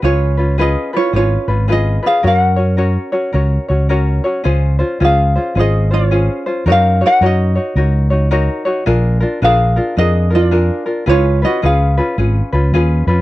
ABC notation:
X:1
M:4/4
L:1/8
Q:"Swing" 1/4=109
K:F#
V:1 name="Ukulele"
[Ec]2 [Gd] [Ec] [Ec]2 [Gd] [Ge] | [Af]6 z2 | [K:Db] z2 [Af]2 [Ae] [Fd]3 | [Bf] [Bg] [Ge]4- [Ge] z |
z2 [Af]2 [Ae] [F=d]3 | [Fd] [Ge] [Af]4- [Af] z |]
V:2 name="Ukulele"
[CEGB] [CEB] [CEGB] [CEB] [CEGB] [CEB] [CEGB] [CEB] | [CFAc] [CFc] [CFAc] [CFc] [CFAc] [CFc] [CFAc] [CFc] | [K:Db] [DFAc] [DFc] [DFAc] [DFc] [DFAc] [DFc] [DFAc] [DFc] | [EGBd] [EGd] [EGBd] [EGd] [EGBd] [EGd] [EGBd] [EGd] |
[=DFAB] [DFB] [DFAB] [DFB] [DFAB] [DFB] [DFAB] [DFB] | [DFA_c] [DFc] [DFAc] [DFc] [DFAc] [DFc] [DFAc] [DFc] |]
V:3 name="Fretless electric bass" clef=bass
C,,4 G,,, G,,,3 | F,,4 C,, C,,3 | [K:Db] D,,2 D,,2 A,,,4 | G,,2 G,,2 D,,4 |
B,,,2 B,,,2 F,,4 | D,,2 D,,2 A,,, D,, E,, F,, |]